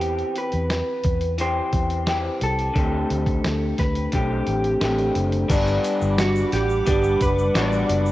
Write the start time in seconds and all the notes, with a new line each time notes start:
Already playing: E2 E3 B3 C4 G4
0.01 closed hi-hat
0.19 closed hi-hat
0.36 B4, closed hi-hat
0.52 E2, closed hi-hat
0.70 snare, closed hi-hat
1.04 E2, kick, closed hi-hat
1.21 closed hi-hat
1.38 E3 C4 G4 C5, closed hi-hat
1.73 E2, kick, closed hi-hat
1.90 closed hi-hat
2.06 E3 C4 G4, snare, closed hi-hat
2.41 C2 A4, closed hi-hat
2.59 closed hi-hat
2.74 D2 D3 A3 C4, kick, closed hi-hat
2.79 G4
3.10 D2, closed hi-hat
3.26 kick, closed hi-hat
3.44 D2, snare, closed hi-hat
3.78 D2 B4, kick, snare, closed hi-hat
3.95 closed hi-hat
4.12 B1 D3 A3 C4 G4, kick, closed hi-hat
4.47 A1, closed hi-hat
4.64 closed hi-hat
4.81 A1 D3 A3 C4 G4, snare, closed hi-hat
4.98 closed hi-hat
5.15 F#1, closed hi-hat
5.32 closed hi-hat
5.48 G1 G3 B3 D4 F#5 B5 D6, kick, closed hi-hat, crash, shaker
5.67 shaker
5.84 closed hi-hat, shaker
6.02 G1, shaker
6.18 F#4, snare, closed hi-hat, shaker
6.36 shaker
6.52 A1 G4, snare, closed hi-hat, shaker
6.69 shaker
6.86 G1 G3 B3 D4 G4, kick, closed hi-hat, shaker
7.03 shaker
7.21 F#1 B4, kick, closed hi-hat, shaker
7.39 shaker
7.54 A1 G3 B3 D4 F#4 D5, snare, closed hi-hat, shaker
7.72 shaker
7.89 F#1, closed hi-hat
8.06 shaker